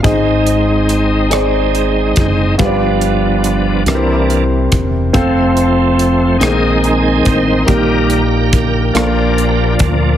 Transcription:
<<
  \new Staff \with { instrumentName = "Grand piano" } { \time 6/8 \key aes \lydian \tempo 4. = 47 <ees' aes' c'' ees''>4 r8 <ees' aes' c'' d''>4 r8 | <f' g' b' c'' d''>4 r8 <e' g' bes' ces'' c''>4 r8 | <c' f' a' c''>4 r8 <c' d' ees' aes' bes'>4 r8 | <bes ees' g' bes'>4 r8 <bes d' f' a' bes'>4 r8 | }
  \new Staff \with { instrumentName = "Grand piano" } { \clef bass \time 6/8 \key aes \lydian aes,4. r4. | g,4. c4. | r4. bes4. | bes,4. bes,4. | }
  \new Staff \with { instrumentName = "Tonewheel organ" } { \time 6/8 \key aes \lydian << { r2. | r2. | r4. aes'4 c''8 | bes'2~ bes'8 r8 | } \\ { r2. | r2. | r4. ees'4. | g'2~ g'8 r8 | } >> }
  \new Staff \with { instrumentName = "Tonewheel organ" } { \time 6/8 \key aes \lydian <aes c' ees'>2. | <f b d'>4. <e bes d'>8 r4 | <f a c'>4. <ees aes c'>4. | <ees g bes>8 r4 <f bes d'>4. | }
  \new Staff \with { instrumentName = "Fingered electric bass" } { \clef bass \time 6/8 \key aes \lydian aes,,2~ aes,,8 ges,,8 | g,,4. c,4 e,,8 | f,,4. bes,,4 a,,8 | bes,,4. bes,,4 d,8 | }
  \new DrumStaff \with { instrumentName = "Drums" } \drummode { \time 6/8 <hh bd>8 hh8 hh8 <hh ss>8 hh8 <hh bd>8 | <hh bd>8 hh8 hh8 <hh ss>8 hh8 <hh bd>8 | <hh bd>8 hh8 hh8 <hh ss>8 hh8 <hh bd>8 | <hh bd>8 hh8 <hh bd>8 <hh ss>8 hh8 <hh bd>8 | }
>>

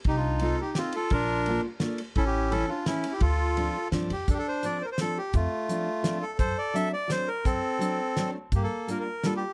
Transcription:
<<
  \new Staff \with { instrumentName = "Bandoneon" } { \time 3/4 \key d \minor \tempo 4 = 170 << { g'16 f'8. a'8 g'8 f'8 a'8 | bes'4. r4. | a'16 g'8. a'8 f'8 e'8. g'16 | a'2 r8 g'8 |
\key f \major a'32 g'32 a'16 c''8 d''8 c''32 bes'32 c''16 a'8 g'8 | f'2~ f'8 a'8 | c''8 d''8 e''8 d''8 c''8 bes'8 | a'2~ a'8 r8 |
g'16 a'8. bes'16 bes'8. a'16 g'8. | } \\ { ees'4. r4. | d'4. r4. | cis'4. r4. | f'2 r4 |
d'4. r4. | a2~ a8 r8 | a'4. r4. | c'2~ c'8 r8 |
bes4. r4. | } >> }
  \new Staff \with { instrumentName = "Clarinet" } { \time 3/4 \key d \minor ees'16 d'8. f'8 ees'8 c'8 f'8 | f'4. r4. | e'16 e'8. e'8 d'8 cis'8. e'16 | f'2 r4 |
\key f \major r2. | r2. | r2. | r2. |
r2. | }
  \new Staff \with { instrumentName = "Steel-string acoustic guitar" } { \time 3/4 \key d \minor r4 <a c' ees' f'>8 r8 <a c' ees' f'>8 r8 | r4 <a bes d' f'>8 r8 <a bes d' f'>8 r8 | r4 <e a cis' e'>8 r8 <e a cis' e'>8 r8 | r4 <f a c' d'>8 r8 <f a c' d'>8 r8 |
\key f \major r4 <f a c' d'>8 r8 <f a c' d'>8 r8 | r4 <f a c' d'>8 r8 <f a c' d'>8 r8 | r4 <fis a c' d'>8 r8 <fis a c' d'>8 r8 | r4 <fis a c' d'>8 r8 <fis a c' d'>8 r8 |
r4 <g bes d' f'>8 r8 <g bes d' f'>8 r8 | }
  \new Staff \with { instrumentName = "Upright bass" } { \clef bass \time 3/4 \key d \minor c,2 r4 | bes,,2 r4 | a,,2 r4 | d,2 g,8 f,8 |
\key f \major f,8 r2 r8 | f,8 r2 r8 | fis,8 r2 r8 | fis,8 r2 r8 |
g,8 r2 r8 | }
  \new DrumStaff \with { instrumentName = "Drums" } \drummode { \time 3/4 <bd cymr>4 cymr4 <cymr sn>8 cymr8 | <bd cymr>4 cymr4 <cymr sn>8 cymr8 | <bd cymr>4 cymr4 <cymr sn>8 cymr8 | <bd cymr>4 cymr4 <cymr sn>8 cymr8 |
<hh bd>4 hh4 <hh sn>4 | <hh bd>4 hh4 <hh sn>4 | <hh bd>4 hh4 <hh sn>4 | <hh bd>4 hh4 <hh sn>4 |
<hh bd>4 hh4 <hh sn>4 | }
>>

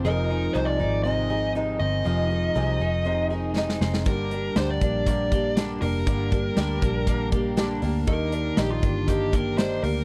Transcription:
<<
  \new Staff \with { instrumentName = "Lead electric guitar" } { \time 4/4 \key f \dorian \tempo 4 = 120 bes'4 c''16 d''8. ees''4 r8 ees''8~ | ees''2~ ees''8 r4. | bes'4 c''16 d''8. d''4 r8 bes'8~ | bes'2~ bes'8 r4. |
bes'4 g'16 f'8. g'8 bes'8 c''8 bes'8 | }
  \new Staff \with { instrumentName = "Clean electric guitar" } { \time 4/4 \key f \dorian f8 ees'8 aes'8 ees'8 c'8 aes'8 ees'8 c'8 | f8 ees'8 aes'8 ees'8 c'8 aes'8 ees'8 c'8 | g,8 d'8 g'8 d'8 bes8 g'8 d'8 bes8 | g,8 d'8 g'8 d'8 bes8 g'8 d'8 bes8 |
ees8 d'8 g'8 d'8 bes8 g'8 d'8 bes8 | }
  \new Staff \with { instrumentName = "Twelve-string acoustic guitar" } { \clef bass \time 4/4 \key f \dorian <f, c ees aes ees'>8 <ees aes ees'>8 <f, c ees aes ees'>8 <ees aes ees'>8 <c ees aes ees'>8 <ees aes ees'>8 <f, c ees aes ees'>8 <ees aes ees'>8 | <f, c ees aes ees'>8 <ees aes ees'>8 <f, c ees aes ees'>8 <ees aes ees'>8 <c ees aes ees'>8 <ees aes ees'>8 <f, c ees aes ees'>8 <ees aes ees'>8 | <g, d g bes d'>8 <g bes d'>8 <g, d g bes d'>8 <g bes d'>8 <d g bes d'>8 <g bes d'>8 <g, d g bes d'>8 <g bes d'>8 | <g, d g bes d'>8 <g bes d'>8 <g, d g bes d'>8 <g bes d'>8 <d g bes d'>8 <g bes d'>8 <g, d g bes d'>8 <g bes d'>8 |
<ees g bes d'>8 <g bes d'>8 <ees g bes d'>8 <g bes d'>8 <ees g bes d'>8 <g bes d'>8 <ees g bes d'>8 <g bes d'>8 | }
  \new Staff \with { instrumentName = "Picked electric bass" } { \clef bass \time 4/4 \key f \dorian f,,4 c,8 aes,,2 g,,8 | f,,4 c,8 f,,2 f,,8 | g,,4 d,8 bes,,2 f,,8 | g,,4 d,8 bes,,2 d,8 |
ees,4 bes,,8 g,,2 d,8 | }
  \new DrumStaff \with { instrumentName = "Drums" } \drummode { \time 4/4 r4 r4 r4 r4 | r4 r4 r4 sn16 sn16 sn16 sn16 | <hh bd>8 hh8 <hh sn>8 <hh bd>8 <hh bd>8 <hh bd>8 <hh sn>8 hho8 | <hh bd>8 <hh bd>8 <hh sn>8 <hh bd>8 <hh bd>8 <hh bd>8 <hh sn>8 hho8 |
<hh bd>8 hh8 <hh sn>8 <hh bd>8 <hh bd>8 <hh bd>8 <hh sn>8 hho8 | }
>>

